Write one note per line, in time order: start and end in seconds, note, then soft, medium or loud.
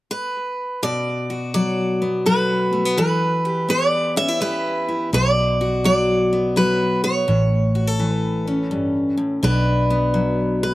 0.11 0.83 B4 medium
0.83 2.98 B2 medium
0.83 1.51 D5 medium
1.30 2.25 F#4 medium
1.54 2.24 F#3 medium
1.54 2.22 D5 medium
2.02 2.72 B3 soft
2.26 2.95 F#3 medium
2.26 2.98 F#4 medium
2.26 2.97 B4 medium
2.73 2.85 A3 soft
2.85 2.98 B3 soft
2.98 5.13 E3 medium
2.98 3.69 B4 medium
3.45 4.40 G4 medium
3.69 4.39 B3 medium
3.69 4.14 D5 medium
4.16 4.28 C#4 medium
4.16 4.41 E5 medium
4.28 4.87 E4 soft
4.41 5.10 B3 medium
4.41 5.10 G4 medium
4.41 5.09 B4 medium
4.88 5.10 E4 medium
5.13 6.95 B1 medium
5.13 7.28 B2 medium
5.13 5.84 D5 medium
5.61 6.55 F#4 medium
5.84 6.55 F#3 medium
5.84 6.57 D5 medium
6.33 7.03 B3 medium
6.56 7.25 F#3 medium
6.56 7.28 F#4 medium
6.56 7.03 B4 medium
7.04 7.26 B3 medium
7.04 8.12 C#5 medium
7.28 9.10 A1 medium
7.28 8.71 A2 medium
7.75 7.87 F#4 medium
7.87 9.43 A4 soft
7.99 9.43 E3 medium
8.12 8.68 B4 medium
8.47 9.41 C#4 medium
8.71 9.17 G2 medium
9.17 9.43 A2 medium
9.43 10.74 B1 medium
9.43 10.74 B2 medium
9.43 10.62 D4 medium
9.43 10.62 B4 medium
9.90 10.74 B3 medium
10.14 10.74 F#3 medium
10.63 10.74 B4 medium